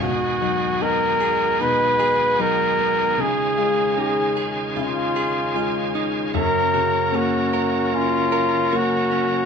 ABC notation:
X:1
M:4/4
L:1/8
Q:1/4=76
K:Blyd
V:1 name="Flugelhorn"
F2 A2 B2 A2 | G2 G z E3 z | A2 F2 E2 F2 |]
V:2 name="Clean electric guitar"
B,, D B, G D G D B, | C, E D G E G E D | F, F C A2 A F C |]
V:3 name="Tonewheel organ"
[B,F]8 | [CE]8 | [A,C]8 |]
V:4 name="Tonewheel organ" clef=bass
[D,G,G]8- | [D,G,G]8 | [C,F,A]8 |]
V:5 name="Grand piano" clef=bass
B,, F, D2 B,,2 F,2 | C, G, C2 C,2 G,2 | F,, C, A,2 C2 A,2 |]